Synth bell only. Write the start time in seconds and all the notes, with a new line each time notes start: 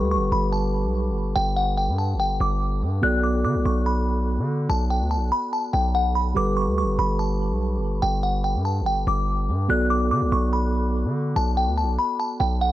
0.11 C#6
0.32 B5
0.53 A5
1.36 G5
1.57 F#5
1.78 G5
1.98 A5
2.20 G5
2.41 D6
3.03 F#6
3.23 D6
3.45 D6
3.66 C#6
3.86 B5
4.70 A5
4.90 G5
5.11 A5
5.32 B5
5.53 A5
5.73 G5
5.95 F#5
6.15 B5
6.37 D6
6.57 C#6
6.78 C#6
6.99 B5
7.19 A5
8.02 G5
8.23 F#5
8.44 G5
8.65 A5
8.86 G5
9.08 D6
9.70 F#6
9.90 D6
10.11 D6
10.32 C#6
10.53 B5
11.36 A5
11.57 G5
11.78 A5
11.99 B5
12.20 A5
12.40 G5
12.61 F#5